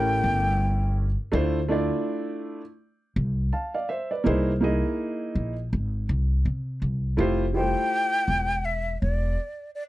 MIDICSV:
0, 0, Header, 1, 4, 480
1, 0, Start_track
1, 0, Key_signature, 0, "major"
1, 0, Tempo, 731707
1, 874, Time_signature, 4, 2, 24, 8
1, 6485, End_track
2, 0, Start_track
2, 0, Title_t, "Flute"
2, 0, Program_c, 0, 73
2, 0, Note_on_c, 0, 79, 96
2, 630, Note_off_c, 0, 79, 0
2, 4953, Note_on_c, 0, 79, 100
2, 5674, Note_on_c, 0, 76, 93
2, 5684, Note_off_c, 0, 79, 0
2, 5908, Note_off_c, 0, 76, 0
2, 5912, Note_on_c, 0, 74, 86
2, 6367, Note_off_c, 0, 74, 0
2, 6394, Note_on_c, 0, 74, 84
2, 6448, Note_off_c, 0, 74, 0
2, 6485, End_track
3, 0, Start_track
3, 0, Title_t, "Grand piano"
3, 0, Program_c, 1, 0
3, 0, Note_on_c, 1, 57, 82
3, 0, Note_on_c, 1, 61, 66
3, 0, Note_on_c, 1, 64, 71
3, 0, Note_on_c, 1, 67, 66
3, 0, Note_on_c, 1, 70, 82
3, 686, Note_off_c, 1, 57, 0
3, 689, Note_off_c, 1, 61, 0
3, 691, Note_off_c, 1, 64, 0
3, 694, Note_off_c, 1, 67, 0
3, 697, Note_off_c, 1, 70, 0
3, 864, Note_on_c, 1, 57, 90
3, 869, Note_on_c, 1, 62, 78
3, 874, Note_on_c, 1, 64, 74
3, 879, Note_on_c, 1, 65, 73
3, 883, Note_on_c, 1, 72, 97
3, 1032, Note_off_c, 1, 57, 0
3, 1035, Note_off_c, 1, 62, 0
3, 1037, Note_off_c, 1, 64, 0
3, 1040, Note_off_c, 1, 65, 0
3, 1042, Note_off_c, 1, 72, 0
3, 1105, Note_on_c, 1, 57, 86
3, 1110, Note_on_c, 1, 62, 75
3, 1115, Note_on_c, 1, 64, 70
3, 1121, Note_on_c, 1, 65, 72
3, 1126, Note_on_c, 1, 74, 79
3, 1706, Note_off_c, 1, 57, 0
3, 1708, Note_off_c, 1, 62, 0
3, 1711, Note_off_c, 1, 64, 0
3, 1713, Note_off_c, 1, 65, 0
3, 1716, Note_off_c, 1, 74, 0
3, 2314, Note_on_c, 1, 81, 62
3, 2318, Note_on_c, 1, 77, 52
3, 2446, Note_off_c, 1, 77, 0
3, 2451, Note_off_c, 1, 81, 0
3, 2456, Note_on_c, 1, 77, 63
3, 2458, Note_on_c, 1, 74, 57
3, 2548, Note_off_c, 1, 77, 0
3, 2549, Note_off_c, 1, 74, 0
3, 2551, Note_on_c, 1, 76, 68
3, 2556, Note_on_c, 1, 72, 64
3, 2689, Note_off_c, 1, 76, 0
3, 2692, Note_off_c, 1, 72, 0
3, 2695, Note_on_c, 1, 74, 58
3, 2701, Note_on_c, 1, 71, 47
3, 2780, Note_on_c, 1, 58, 77
3, 2786, Note_on_c, 1, 63, 78
3, 2792, Note_on_c, 1, 64, 78
3, 2796, Note_on_c, 1, 68, 79
3, 2801, Note_on_c, 1, 72, 88
3, 2924, Note_off_c, 1, 74, 0
3, 2928, Note_off_c, 1, 71, 0
3, 2950, Note_off_c, 1, 58, 0
3, 2953, Note_off_c, 1, 63, 0
3, 2956, Note_off_c, 1, 64, 0
3, 2958, Note_off_c, 1, 68, 0
3, 2961, Note_off_c, 1, 72, 0
3, 3021, Note_on_c, 1, 58, 78
3, 3028, Note_on_c, 1, 63, 74
3, 3032, Note_on_c, 1, 64, 69
3, 3038, Note_on_c, 1, 68, 74
3, 3044, Note_on_c, 1, 75, 83
3, 3624, Note_off_c, 1, 58, 0
3, 3627, Note_off_c, 1, 63, 0
3, 3629, Note_off_c, 1, 64, 0
3, 3632, Note_off_c, 1, 68, 0
3, 3635, Note_off_c, 1, 75, 0
3, 4704, Note_on_c, 1, 57, 77
3, 4707, Note_on_c, 1, 64, 74
3, 4715, Note_on_c, 1, 65, 83
3, 4719, Note_on_c, 1, 67, 73
3, 4725, Note_on_c, 1, 72, 93
3, 4872, Note_off_c, 1, 57, 0
3, 4874, Note_off_c, 1, 64, 0
3, 4878, Note_off_c, 1, 65, 0
3, 4880, Note_off_c, 1, 67, 0
3, 4883, Note_off_c, 1, 72, 0
3, 4941, Note_on_c, 1, 55, 52
3, 4945, Note_on_c, 1, 64, 59
3, 4951, Note_on_c, 1, 65, 61
3, 4956, Note_on_c, 1, 67, 61
3, 4962, Note_on_c, 1, 72, 71
3, 4985, Note_on_c, 1, 57, 62
3, 4998, Note_off_c, 1, 55, 0
3, 5545, Note_off_c, 1, 64, 0
3, 5549, Note_off_c, 1, 65, 0
3, 5551, Note_off_c, 1, 67, 0
3, 5554, Note_off_c, 1, 72, 0
3, 5565, Note_off_c, 1, 57, 0
3, 6485, End_track
4, 0, Start_track
4, 0, Title_t, "Upright bass"
4, 0, Program_c, 2, 32
4, 0, Note_on_c, 2, 33, 92
4, 135, Note_off_c, 2, 33, 0
4, 156, Note_on_c, 2, 31, 93
4, 752, Note_off_c, 2, 31, 0
4, 874, Note_on_c, 2, 38, 98
4, 1232, Note_off_c, 2, 38, 0
4, 2074, Note_on_c, 2, 36, 97
4, 2293, Note_off_c, 2, 36, 0
4, 2797, Note_on_c, 2, 36, 97
4, 3153, Note_off_c, 2, 36, 0
4, 3512, Note_on_c, 2, 34, 77
4, 3732, Note_off_c, 2, 34, 0
4, 3757, Note_on_c, 2, 32, 82
4, 3974, Note_off_c, 2, 32, 0
4, 3996, Note_on_c, 2, 36, 90
4, 4214, Note_off_c, 2, 36, 0
4, 4233, Note_on_c, 2, 48, 89
4, 4452, Note_off_c, 2, 48, 0
4, 4472, Note_on_c, 2, 36, 79
4, 4692, Note_off_c, 2, 36, 0
4, 4713, Note_on_c, 2, 29, 92
4, 5071, Note_off_c, 2, 29, 0
4, 5430, Note_on_c, 2, 28, 80
4, 5886, Note_off_c, 2, 28, 0
4, 5917, Note_on_c, 2, 28, 83
4, 6134, Note_off_c, 2, 28, 0
4, 6485, End_track
0, 0, End_of_file